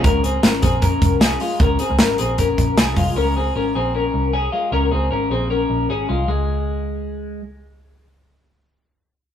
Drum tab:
HH |xxxxxxxo|xxxxxxxo|--------|--------|
SD |--o---o-|--o---o-|--------|--------|
BD |o--ooo--|o---oo-o|--------|--------|

HH |--------|--------|
SD |--------|--------|
BD |--------|--------|